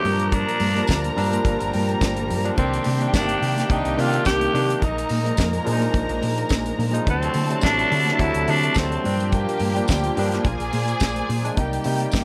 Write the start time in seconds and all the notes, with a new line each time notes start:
Already playing: G4
0.04 G2 A#2 F3 G3 A#3 C4 F4 A#4 A#5, open hi-hat, muted conga, low conga
0.13 D4
0.20 closed hi-hat
0.31 D4, kick, closed hi-hat, muted conga, low conga
0.49 closed hi-hat
0.60 G2, open hi-hat, muted conga, high conga
0.76 A#2 F3 G3 D4, closed hi-hat
0.87 D2, kick, snare, closed hi-hat, tambourine, high conga
1.04 closed hi-hat
1.16 G2 A#2 F3 G3 D4, open hi-hat, muted conga, low conga
1.31 closed hi-hat, high conga
1.45 G1, kick, closed hi-hat
1.60 G1, closed hi-hat
1.73 G2 G5, open hi-hat, high conga
1.89 closed hi-hat
2.01 G1 C5, kick, snare, closed hi-hat, tambourine, muted conga, high conga
2.15 closed hi-hat, high conga
2.28 G2, open hi-hat, muted conga, low conga
2.44 A#2 F3 G3 D4, closed hi-hat
2.56 C2 C3 D#3 A#3 C4 D4 G4 G5, kick, closed hi-hat, muted conga, low conga
2.74 closed hi-hat
2.84 C3, open hi-hat, muted conga, high conga
3.00 C3 D#3 A#3 D4, closed hi-hat
3.13 G1 C3 D#3 A#3 D4, kick, snare, closed hi-hat, tambourine, muted conga, high conga
3.29 closed hi-hat
3.41 C3, open hi-hat, muted conga, low conga
3.55 snare, closed hi-hat, high conga
3.70 C2 C3 D#3 A#3 D4 D#4, kick, closed hi-hat, muted conga
3.85 C2, closed hi-hat
3.97 C3 D#3 A#3 D4 F4, open hi-hat, high conga
4.14 closed hi-hat
4.25 C2 G4, kick, snare, closed hi-hat, tambourine, high conga
4.40 closed hi-hat, high conga
4.53 C3 D#3 A#3 D4, open hi-hat, low conga
4.70 closed hi-hat
4.81 A#1 G#3 A#3 D#4 A#4 A#5, kick, closed hi-hat, low conga
4.98 closed hi-hat
5.09 A#2, open hi-hat, muted conga, high conga
5.23 A#2 F3 G#3 D#4, closed hi-hat
5.37 F2, kick, snare, closed hi-hat, tambourine, high conga
5.53 closed hi-hat
5.64 A#2 F3 G#3 D4, open hi-hat, muted conga, low conga
5.73 D#4
5.79 closed hi-hat, high conga
5.94 A#1, kick, closed hi-hat
6.09 A#1, closed hi-hat
6.22 A#2, open hi-hat, muted conga, high conga
6.38 closed hi-hat
6.49 A#1, kick, snare, closed hi-hat, tambourine, muted conga, high conga
6.64 closed hi-hat, high conga
6.78 A#2, open hi-hat, low conga
6.92 A#2 F3 G#3 D#4, closed hi-hat
7.05 D2 C3 D3 F#3 A3 C4 D4 E4 F#4 A4 A5, kick, closed hi-hat, muted conga, low conga
7.10 C4
7.23 closed hi-hat
7.34 D3, open hi-hat, muted conga, high conga
7.49 C3 F#3 A3 D4, closed hi-hat
7.61 A1 C3 F#3 A3 D4, kick, snare, closed hi-hat, tambourine, muted conga, high conga
7.79 closed hi-hat
7.91 D3, open hi-hat, low conga
8.05 snare, closed hi-hat, high conga
8.18 D2 C3 F#3 A3 D4 E4, kick, closed hi-hat, muted conga
8.34 D2, closed hi-hat
8.47 C3 D3 F#3 A3 D4, open hi-hat, high conga
8.63 closed hi-hat
8.74 D2 C4, kick, snare, closed hi-hat, tambourine, muted conga, high conga
8.90 closed hi-hat, high conga
9.04 G2 A#2 F3 G3 A#3 D4 F4 G4 G5, open hi-hat, low conga
9.20 closed hi-hat
9.32 A#3, kick, closed hi-hat, muted conga, low conga
9.49 closed hi-hat
9.59 G2, open hi-hat, muted conga, high conga
9.75 A#2 F3 G3 D4, closed hi-hat
9.88 D2, kick, snare, closed hi-hat, tambourine, muted conga, high conga
10.04 closed hi-hat
10.16 G2 A#2 F3 G3 D4, open hi-hat, muted conga, low conga
10.31 snare, closed hi-hat, high conga
10.44 A#1 G#4 C5 D5 G#5, kick, closed hi-hat, muted conga
10.60 A#1, closed hi-hat
10.73 A#2, open hi-hat, muted conga, high conga
10.88 closed hi-hat
11.00 A#1, kick, snare, closed hi-hat, tambourine, muted conga, high conga
11.16 closed hi-hat, high conga
11.29 A#2, open hi-hat, muted conga, low conga
11.43 A#2 F3 G#3 D4, closed hi-hat
11.56 C2 C3 D#3 G3 A#3 D#4 G4 D5 G5, kick, closed hi-hat, muted conga, low conga
11.73 closed hi-hat
11.84 C3 G3 A#3 D#4, open hi-hat, high conga
12.00 closed hi-hat
12.12 G1, kick, snare, closed hi-hat, tambourine, muted conga, high conga